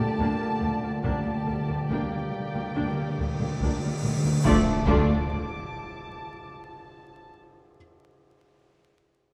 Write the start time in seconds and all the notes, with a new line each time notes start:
Already playing: A#2 D3 A3 C#4 D4 G4 D5 A5 C#6 D6
0.03 D3
0.12 D3
0.19 D2 D3 A#3 D4, taiko
0.26 D3
0.34 D3
0.41 D2 D3 A#3
0.51 D3
0.59 D2 D3 G3 A#3, taiko low-mid
0.66 D3
0.74 D3
0.81 D2 D3 A#3
0.90 D3
0.97 D3
1.03 D2 D3 A3 A#3 D4 G4 D5 A5, taiko, cymbal swell
1.14 D3
1.21 D3
1.25 D2 A#3
1.29 D3
1.37 D3
1.44 D2 D3 G3 A#3
1.52 D3
1.60 D3
1.68 D2 D3 A#3, taiko low-mid
1.75 D3
1.83 D3
1.90 D2 D3 G3 A#3 D4 G5, taiko
1.99 D3
2.06 D3
2.11 D2 D3 A#3
2.23 D3
2.31 D3
2.40 D3
2.47 D3
2.55 D2 D3 A#3
2.63 D3
2.70 D3
2.76 D2 D3 A#3 D4
2.86 D3
2.93 D2 D3 A#3
3.02 D3
3.09 D3
3.17 D2 D3 G3 A#3, taiko low-mid
3.25 D3
3.32 D3
3.39 D2 D3 A#3, taiko low-mid
3.48 D3
3.55 D3
3.60 D2 D3 A#3 D4, taiko
3.71 D3
3.78 D2 D3
3.83 D3 A#3
3.94 D3
4.01 D2 D3 G3 A#3, taiko low-mid
4.09 D3
4.17 D3
4.23 D2 D3 A#3
4.32 D3
4.44 D2 D3 F3 A3 D4 F4 D5 A5 D6, taiko, impact
4.86 D2 D3 A3 D4 F4 D5, taiko